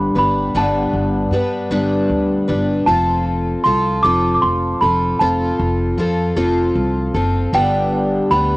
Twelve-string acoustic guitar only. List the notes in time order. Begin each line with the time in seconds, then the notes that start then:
Already playing: G2 D3 G3 B3 D4 B4
0.15 G3 B3 D4 B4
0.55 G2 D3 G3 B3 D4 B4
1.32 G3 B3 D4 B4
1.71 G2 D3 G3 B3 D4 B4
2.48 G3 B3 D4 B4
2.87 F3 C4 F4 A4
3.64 F3 C4 F4 A4
4.04 F3 C4 F4 A4
4.82 C4 F4 A4
5.21 F3 C4 F4 A4
5.98 F3 C4 F4 A4
6.36 F3 C4 F4 A4
7.14 C4 F4 A4
7.53 G2 D3 G3 B3 D4 G4
8.31 G3 B3 D4 G4